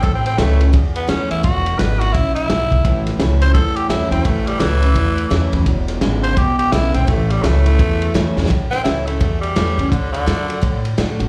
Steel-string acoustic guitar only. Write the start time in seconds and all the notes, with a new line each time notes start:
0.03 A2
0.38 E3 A3 C#4 E4
0.60 C#4 E4
0.73 E2
1.08 E3 A3 C#4 E4
1.43 E2
1.79 D3 G#3 B3 E4
2.00 B3 E4
2.15 F#2
2.50 G#2
2.85 A2
3.19 E3 A3 C#4 E4
3.41 C#4 E4
3.55 E2
3.90 E3 A3 C#4 E4
4.11 C#4 E4
4.25 A2
4.59 E3 A3 C#4 E4
4.82 C#4 E4
4.95 E2
5.30 E3 A3 C#4 E4
5.52 C#4 E4
5.66 E2
6.01 D3 G#3 B3 E4
6.37 B2
6.73 D3 G#3 B3 E4
6.94 B3 E4
7.07 A2
7.44 E3 A3 C#4 E4
7.66 C#4 E4
7.80 E2
8.14 E3 A3 C#4 E4
8.37 C#4 E4
8.50 A2
8.85 E3 A3 C#4 E4
9.07 C#4 E4
9.20 E2
9.56 E3 A3 C#4 E4
9.78 C#4 E4
9.93 D3
10.26 D3 A3 D4 F#4
10.48 D4 F#4
10.61 A2
10.98 D3 A3 D4 F#4
11.19 D4 F#4